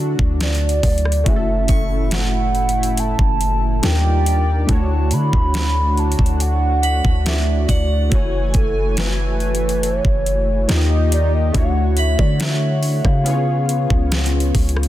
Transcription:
Already playing: D3 F#3 A3 D4 E4 F#4 A4 B5
0.19 D2, kick
0.41 D5, snare, closed hi-hat
0.55 closed hi-hat
0.69 closed hi-hat
0.83 D2, kick, closed hi-hat, open hi-hat
0.98 closed hi-hat
1.05 cross-stick
1.12 closed hi-hat
1.24 F#1 A2 A3 C#4 E4, kick, closed hi-hat
1.28 F#4 G#4 E5
1.36 A4
1.68 F#1 C#6, kick, closed hi-hat
2.11 F#5, snare, closed hi-hat
2.55 closed hi-hat
2.69 closed hi-hat
2.83 closed hi-hat
2.97 A5, closed hi-hat
3.19 F#1, kick
3.41 closed hi-hat
3.82 D#2 D#3 G3 D4 D#4 F4 G4 A4 D5 G5, snare, closed hi-hat
3.92 A#4
4.26 closed hi-hat
4.67 D2 D3 A3 D4 E4 F#4 A5, kick, closed hi-hat
4.71 F#4 C#5
5.11 D3 B5, closed hi-hat
5.33 D2, kick
5.54 snare, closed hi-hat
5.97 A5, closed hi-hat
6.12 closed hi-hat
6.19 D2, kick
6.26 closed hi-hat
6.40 F#5, closed hi-hat
6.83 B5, closed hi-hat
7.05 D2, kick
7.25 A3 D4 E4 F#4 D5 E5, snare, closed hi-hat
7.69 D2 D5 F#5, kick, closed hi-hat
8.09 F#1 E3 A3 E4 F#4 C#5 G#5, kick, closed hi-hat
8.14 C#5 G#5
8.54 F#1 A4, kick, closed hi-hat
8.97 B4, snare, closed hi-hat
9.40 closed hi-hat
9.55 closed hi-hat
9.69 closed hi-hat
9.83 C#5, closed hi-hat
10.05 F#1, kick
10.26 closed hi-hat
10.68 D#2 D#3 A#3 D#4 F4 G4 C5 D#5, snare, closed hi-hat
10.77 D#5
11.12 D5, closed hi-hat
11.34 D#5
11.52 D2 D3 A3 D4 E4 F#4 C#5 F#5, kick, closed hi-hat
11.56 F#4 C#5
11.97 E5 B5, closed hi-hat
12.19 D3 D5, kick
12.40 E5, snare, closed hi-hat
12.83 open hi-hat
13.05 C#3 F5, kick, cross-stick
13.24 C#3 B3 C#4 E4 F4, closed hi-hat
13.28 G#4 C#5
13.33 F4
13.69 closed hi-hat
13.90 C#2, kick
14.12 snare, closed hi-hat
14.26 closed hi-hat
14.40 closed hi-hat
14.55 C#2, kick, closed hi-hat, open hi-hat
14.69 closed hi-hat
14.77 cross-stick
14.83 closed hi-hat

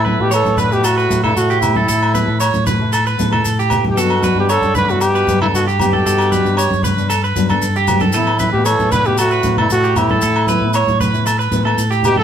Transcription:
Already playing: A2 E4
0.05 B3 E4 A4 B4, high conga
0.20 A2 B2 E4 G4 A4
0.31 E3 A4 C#5, low agogo, maracas
0.45 A2, high conga, maracas
0.57 D3 B4, high conga, low conga, maracas
0.71 B2 E4 G4 A4, maracas
0.84 A2 F#4 A4, low agogo, maracas
0.98 B4, maracas
1.10 A2 E4 A4, muted nylon-string guitar stroke, high conga, maracas
1.24 G2 E4 A4, low conga, low agogo
1.36 A2 F#4, maracas
1.50 G4, maracas
1.61 A2 B3 E4 A4, low conga, low agogo, maracas
1.75 A4, high conga
1.89 A2 A4, maracas
2.03 low agogo
2.14 B3 E4 A4 B4, high conga, maracas
2.26 A2 E4 A4
2.40 C#5, low agogo, maracas
2.54 A2, high conga, maracas
2.67 B4, high conga, low conga, maracas
2.80 E4 A4
2.93 A4, low agogo, maracas
3.06 B4, maracas
3.18 A2 B3 E4 A4, high conga, maracas
3.31 E4 A4, low conga, low agogo
3.45 A2, maracas
3.59 G4, maracas
3.70 B3 E4 A4, low conga, low agogo, maracas
3.85 high conga
3.90 B2 G4
3.96 G2 F#3 B3 D4 F#4 A4, maracas
4.02 B2
4.10 low agogo
4.22 F#3 B3 D4 B4, high conga, maracas
4.35 G2 B3 D4
4.40 B2 G4
4.49 D3 A4 C#5, low agogo, maracas
4.61 G2, high conga, maracas
4.75 B4, high conga, low conga, maracas
4.80 D3
4.89 A2 B3 D4 F#4, maracas
5.01 B2 G4, muted clean electric guitar stroke, low agogo, maracas
5.15 B4, maracas
5.27 G2 F#3 B3 D4, high conga, maracas
5.41 G2 B3 D4 E4 A4, low conga, low agogo
5.53 G2 B2 F#4, maracas
5.67 G4, maracas
5.79 B2 F#3 B3 D4 G4, low conga, low agogo, maracas
5.93 A4, high conga
6.06 G2 A4, maracas
6.19 low agogo, maracas
6.32 F#3 B3 D4 B4, high conga, maracas
6.44 G2 B3 D4, maracas
6.57 C#5, low agogo, maracas
6.71 G2, high conga, maracas
6.83 B4, high conga, low conga, maracas
6.98 B3 D4, maracas
7.10 A4, low agogo, maracas
7.24 B4, maracas
7.36 G2 F#3 B3 D4, high conga, maracas
7.49 B3 D4 A4, low conga, low agogo, maracas
7.62 G2, maracas
7.76 G4, maracas
7.87 F#3 B3 D4, low conga, low agogo, maracas
8.00 A4, high conga, maracas
8.13 A2 E3 B3 E4 A4, maracas
8.18 A2
8.27 low agogo
8.39 E3 B3 E4 B4, high conga, maracas
8.53 A2 B2 B3 G4, muted nylon-string guitar stroke
8.65 E3 A4 C#5, low agogo, maracas
8.79 A2, high conga, maracas
8.92 D3 B4, high conga, low conga, maracas
9.05 B2 B3 E4 G4, maracas
9.18 A2 F#4 A4, low agogo, maracas
9.31 B4, maracas
9.43 A2 E3 B3, high conga, maracas
9.47 E4
9.57 G2 B3 E4 A4, low conga, low agogo
9.70 A2 F#4, maracas
9.84 G4, maracas
9.96 A2 E3 B3 E4, low conga, low agogo, maracas
10.10 A4, high conga
10.21 A2 A4, maracas
10.36 low agogo
10.47 E3 B3 B4, high conga, maracas
10.51 E4
10.61 A2 B3 E4
10.73 C#5, low agogo, maracas
10.87 A2, high conga, maracas
11.00 B4, high conga, low conga, maracas
11.14 B3 E4, maracas
11.26 A4, low agogo, maracas
11.39 B4, maracas
11.51 A2 E3 B3 E4, high conga, maracas
11.65 B3 E4 A4, low agogo
11.78 A2, maracas
11.91 G4, maracas
12.03 B2 B3 E4 G4, low conga, low agogo, maracas
12.16 C#3 A4, high conga

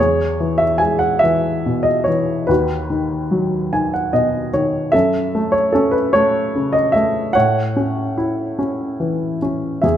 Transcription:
Already playing: C#5
0.00 E2 G#4
0.40 E3
0.58 E5
0.78 G#3 G#5
0.99 F#5
1.19 E5
1.23 E3
1.66 B2
1.83 D#5
2.04 E3 C#5
2.47 D#2 F#4 B4
2.90 D#3
3.31 F#3
3.73 D#3 G#5
3.94 F#5
4.13 B2 D#5
4.54 D#3 C#5
4.92 F#2 A4 E5
5.35 A3
5.52 C#5
5.72 C#4 A4
5.91 B4
6.13 A3 C#5
6.55 C#3
6.73 D#5
6.92 A3 E5
7.33 A2 C#5 F#5
7.76 C#4
8.18 E4
8.59 C#4
9.00 E3
9.42 C#4
9.82 E2 G#4 E5

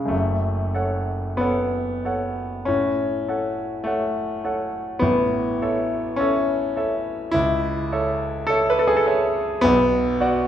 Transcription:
Already playing: C#3 G#3 A3 C#4
0.05 F#2 A3
0.10 F#1
0.74 A4 C#5 F#5
1.37 B3 A4 C#5 F#5
2.05 A4 C#5 F#5
2.65 A2 C#4
3.28 A4 C#5 F#5
3.84 A3 A4 C#5 F#5
4.44 A4 C#5 F#5
4.99 A1 A2 B3
5.62 A4 C#5 E5
6.16 C#4 A4 C#5 E5
6.76 A4 C#5 E5
7.31 C#2 E4
7.92 A4 C#5 E5
8.47 A4 C#5 E5
8.70 B4
8.79 A4
8.87 G#4
8.96 A4
9.06 A4 C#5 E5
9.61 B1 B3
10.20 F#4 D5 F#5

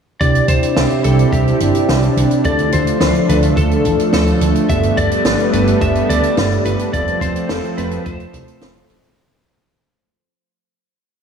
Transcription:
0.20 C2 C3 C4 D4 E4 G4 D5, kick, closed hi-hat
0.35 closed hi-hat
0.48 C2 C5, kick, closed hi-hat
0.63 closed hi-hat
0.77 C2, snare, closed hi-hat
0.90 closed hi-hat
1.04 C2 C4 D4 E4 G4 A4, closed hi-hat
1.19 closed hi-hat
1.33 C2 G4, kick, closed hi-hat
1.48 closed hi-hat
1.60 G1, closed hi-hat
1.75 closed hi-hat
1.89 C2, snare, closed hi-hat
2.03 closed hi-hat
2.17 C2, closed hi-hat
2.31 closed hi-hat
2.44 D2 F3 A3 D4 F4 A4 D5, kick, closed hi-hat
2.59 closed hi-hat
2.72 D2 C5, kick, closed hi-hat
2.87 closed hi-hat
3.00 D2, snare, closed hi-hat
3.15 closed hi-hat
3.29 D2 A3 D4 F4 A4 B4, closed hi-hat
3.43 closed hi-hat
3.57 D2 A4, kick, closed hi-hat
3.71 closed hi-hat
3.85 A1, kick, closed hi-hat
3.99 closed hi-hat
4.13 D2 A4, snare, closed hi-hat
4.27 closed hi-hat
4.41 D2, closed hi-hat
4.55 closed hi-hat
4.69 G1 G3 B3 D4 G4 A4 E5, kick, closed hi-hat
4.83 closed hi-hat
4.97 G1 D5, kick, closed hi-hat
5.11 closed hi-hat
5.25 G1, snare, closed hi-hat
5.39 closed hi-hat
5.53 G1 B3 D4 G4 A4 B4, closed hi-hat
5.67 closed hi-hat
5.81 G1 E5, kick, closed hi-hat
5.95 closed hi-hat
6.09 D2 D5, closed hi-hat
6.23 closed hi-hat
6.37 G1, snare, closed hi-hat
6.52 closed hi-hat
6.65 G1 B4, closed hi-hat
6.79 closed hi-hat
6.93 F1 F3 A3 C4 F4 A4 D5, kick, closed hi-hat
7.08 closed hi-hat
7.21 F1 C5, kick, closed hi-hat
7.36 closed hi-hat
7.49 F1 A4, snare, closed hi-hat
7.64 closed hi-hat
7.78 F1 A3 C4 F4 A4 B4, closed hi-hat
7.91 closed hi-hat
8.06 F1 C5, kick, closed hi-hat
8.20 closed hi-hat
8.33 C2, kick, closed hi-hat
8.48 A3 C4 F4 A4, closed hi-hat
8.61 F1, snare, closed hi-hat
8.77 closed hi-hat
8.90 F1 A3 C4 F4 A4, closed hi-hat
9.04 closed hi-hat

